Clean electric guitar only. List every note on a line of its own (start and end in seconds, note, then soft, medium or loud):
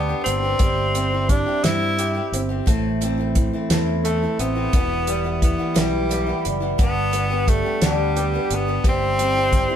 0.00 0.26 G2 medium
0.00 0.60 G3 medium
0.00 0.25 B3 medium
0.00 0.60 D4 medium
0.00 0.60 G4 medium
0.26 0.61 B3 medium
0.61 1.29 G3 medium
0.96 2.33 C4 medium
1.30 2.68 G3 medium
1.65 3.71 E4 medium
1.99 2.68 G4 medium
2.34 2.68 C4 medium
2.68 4.40 A2 medium
3.03 4.38 C4 medium
3.37 4.74 E3 medium
3.72 4.74 E4 medium
4.05 4.74 A4 medium
4.39 4.74 C4 medium
4.74 6.45 E2 medium
5.08 6.45 G3 medium
5.42 6.80 E3 medium
5.78 6.80 E4 medium
6.12 8.16 G4 medium
6.46 7.14 G3 medium
6.80 8.51 G2 medium
7.14 8.51 B3 medium
7.48 8.84 G3 medium
7.82 8.85 D4 medium
8.17 8.85 G4 medium
8.52 8.86 B3 medium
8.85 9.52 G3 medium
9.20 9.76 C4 medium
9.53 9.76 G3 medium